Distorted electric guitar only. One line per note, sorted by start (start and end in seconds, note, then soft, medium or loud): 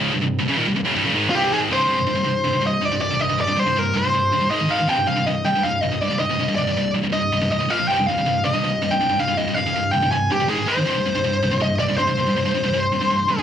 0.00 0.12 C#2 medium
0.00 0.12 G#2 loud
0.00 0.13 C#3 loud
0.14 0.21 C2 medium
0.14 0.21 G2 medium
0.22 0.37 C2 medium
0.22 0.37 G2 medium
0.39 0.48 C2 medium
0.39 0.49 G2 medium
0.49 0.57 F#2 medium
0.49 0.58 C#3 loud
0.58 0.67 D#2 medium
0.58 0.67 A#2 loud
0.67 0.75 C2 medium
0.67 0.75 G2 medium
0.76 0.85 C2 medium
0.76 0.86 G2 medium
0.85 0.94 F#2 medium
0.85 0.95 C#3 loud
0.95 1.04 C2 medium
0.95 1.05 G2 loud
1.05 1.13 F#2 medium
1.05 1.14 C#3 loud
1.14 1.32 G#2 medium
1.14 1.32 D#3 loud
1.14 1.33 G#3 loud
1.33 1.51 C2 loud
1.33 1.51 G2 loud
1.33 1.52 C3 loud
1.51 1.69 G#2 medium
1.51 1.70 D#3 loud
1.51 1.70 G#3 loud
1.69 1.87 C2 medium
1.69 1.88 G2 loud
1.69 1.89 C3 medium
1.88 1.96 C2 medium
1.88 1.96 G2 medium
1.88 1.98 C3 loud
1.97 2.06 C2 medium
1.97 2.06 G2 medium
2.07 2.15 C2 medium
2.07 2.14 G2 medium
2.16 2.24 C2 medium
2.16 2.25 G2 medium
2.25 2.43 C2 medium
2.25 2.43 G2 medium
2.45 2.52 C2 medium
2.45 2.52 G2 medium
2.53 2.60 C2 medium
2.53 2.61 G2 medium
2.62 2.80 C2 medium
2.62 2.80 G2 medium
2.82 2.92 C2 medium
2.82 2.91 G2 medium
2.92 2.99 C2 medium
2.92 3.00 G2 medium
3.00 3.10 C2 medium
3.00 3.09 G2 medium
3.11 3.19 C2 medium
3.11 3.18 G2 medium
3.19 3.28 C2 medium
3.19 3.28 G2 medium
3.29 3.37 C2 medium
3.29 3.37 G2 medium
3.38 3.47 C2 medium
3.38 3.46 G2 medium
3.48 3.56 C2 medium
3.48 3.55 G2 medium
3.57 3.66 C2 medium
3.57 3.66 G2 medium
3.67 3.76 C2 medium
3.67 3.76 G2 medium
3.77 3.93 C2 medium
3.77 3.93 G2 medium
3.95 4.04 C2 medium
3.95 4.03 G2 medium
4.04 4.13 C2 medium
4.04 4.14 G2 medium
4.14 4.31 C2 medium
4.14 4.31 G2 medium
4.33 4.40 C2 medium
4.33 4.40 G2 medium
4.41 4.50 C2 medium
4.41 4.51 G2 medium
4.51 4.59 G#2 medium
4.51 4.59 D#3 medium
4.51 4.60 G#3 loud
4.61 4.67 G#2 medium
4.61 4.69 D#3 medium
4.69 4.77 G#2 medium
4.69 4.78 D#3 medium
4.69 4.78 G#3 loud
4.80 4.87 G#2 medium
4.80 4.88 D#3 medium
4.87 4.96 C2 medium
4.87 4.96 G2 loud
4.87 4.97 C3 loud
4.97 5.05 C2 medium
4.97 5.05 G2 medium
5.06 5.16 C2 medium
5.06 5.15 G2 medium
5.16 5.25 C2 medium
5.16 5.25 G2 medium
5.27 5.43 C2 medium
5.27 5.43 G2 medium
5.46 5.54 C2 medium
5.46 5.54 G2 medium
5.55 5.63 C2 medium
5.55 5.64 G2 medium
5.64 5.80 C2 medium
5.64 5.81 G2 medium
5.83 5.91 C2 medium
5.83 5.90 G2 medium
5.92 6.01 C2 medium
5.92 6.00 G2 medium
6.02 6.09 C2 medium
6.02 6.09 G2 medium
6.10 6.19 C2 medium
6.10 6.18 G2 medium
6.19 6.29 C2 medium
6.19 6.28 G2 medium
6.30 6.38 C2 medium
6.30 6.38 G2 medium
6.39 6.47 C2 medium
6.39 6.47 G2 medium
6.48 6.57 C2 medium
6.48 6.57 G2 medium
6.58 6.67 C2 medium
6.58 6.66 G2 medium
6.67 6.76 C2 medium
6.67 6.76 G2 medium
6.77 6.93 C2 medium
6.77 6.93 G2 medium
6.95 7.03 C2 medium
6.95 7.02 G2 medium
7.04 7.11 C2 medium
7.04 7.12 G2 medium
7.12 7.29 C2 medium
7.12 7.29 G2 medium
7.32 7.41 C2 medium
7.32 7.40 G2 medium
7.42 7.50 C2 medium
7.42 7.50 G2 medium
7.52 7.60 C2 medium
7.52 7.59 G2 medium
7.60 7.69 C2 medium
7.60 7.69 G2 medium
7.70 7.77 A#2 medium
7.70 7.78 F3 loud
7.70 7.78 A#3 medium
7.79 7.88 A#2 medium
7.79 7.88 F3 medium
7.90 7.96 C2 medium
7.90 7.97 G2 medium
7.90 7.97 C3 loud
7.99 8.07 C2 medium
7.99 8.07 G2 medium
8.09 8.17 C2 medium
8.09 8.17 G2 medium
8.18 8.25 C2 medium
8.18 8.26 G2 medium
8.26 8.42 C2 medium
8.26 8.42 G2 medium
8.45 8.54 C2 medium
8.45 8.53 G2 medium
8.54 8.63 C2 medium
8.54 8.62 G2 medium
8.64 8.80 C2 medium
8.64 8.80 G2 medium
8.82 8.90 C2 medium
8.82 8.90 G2 medium
8.91 9.00 C2 medium
8.91 9.00 G2 medium
9.01 9.08 C2 medium
9.01 9.08 G2 medium
9.09 9.18 C2 medium
9.09 9.18 G2 medium
9.20 9.27 C2 medium
9.20 9.27 G2 medium
9.28 9.36 C2 medium
9.28 9.37 G2 medium
9.38 9.46 C2 medium
9.38 9.46 G2 medium
9.47 9.56 C2 medium
9.47 9.56 G2 medium
9.57 9.66 C2 medium
9.57 9.65 G2 medium
9.66 9.75 C2 medium
9.66 9.75 G2 medium
9.76 9.92 C2 medium
9.76 9.92 G2 medium
9.93 10.02 C2 medium
9.93 10.01 G2 medium
10.02 10.11 C2 medium
10.02 10.11 G2 medium
10.12 10.29 C2 medium
10.12 10.29 G2 medium
10.30 10.39 C2 medium
10.30 10.39 G2 medium
10.40 10.48 C2 medium
10.40 10.49 G2 medium
10.48 10.57 G#2 medium
10.48 10.57 D#3 medium
10.48 10.57 G#3 medium
10.58 10.66 G#2 medium
10.58 10.67 D#3 medium
10.67 10.75 G#2 medium
10.67 10.76 D#3 medium
10.67 10.76 G#3 loud
10.78 10.85 G#2 medium
10.78 10.85 D#3 medium
10.85 10.94 C2 medium
10.85 10.94 G2 loud
10.85 10.95 C3 loud
10.96 11.05 C2 medium
10.96 11.05 G2 medium
11.06 11.14 C2 medium
11.06 11.14 G2 medium
11.15 11.23 C2 medium
11.15 11.23 G2 medium
11.24 11.41 C2 medium
11.24 11.41 G2 medium
11.43 11.51 C2 medium
11.43 11.50 G2 medium
11.52 11.59 C2 medium
11.52 11.59 G2 medium
11.60 11.77 C2 medium
11.60 11.78 G2 medium
11.79 11.88 C2 medium
11.79 11.87 G2 medium
11.89 11.98 C2 medium
11.89 11.98 G2 medium
11.99 12.07 C2 medium
11.99 12.07 G2 medium
12.08 12.18 C2 medium
12.08 12.17 G2 medium
12.18 12.26 C2 medium
12.18 12.26 G2 medium
12.27 12.36 C2 medium
12.27 12.36 G2 medium
12.37 12.45 C2 medium
12.37 12.45 G2 medium
12.46 12.54 C2 medium
12.46 12.53 G2 medium
12.55 12.63 C2 medium
12.55 12.62 G2 medium
12.64 12.72 C2 medium
12.64 12.73 G2 medium
12.73 12.90 C2 medium
12.73 12.90 G2 medium
12.92 13.00 C2 medium
12.92 13.00 G2 medium
13.01 13.09 C2 medium
13.01 13.09 G2 medium
13.10 13.27 C2 medium
13.10 13.27 G2 medium
13.28 13.37 C2 medium
13.28 13.37 G2 medium
13.38 13.43 C2 medium
13.38 13.43 G2 medium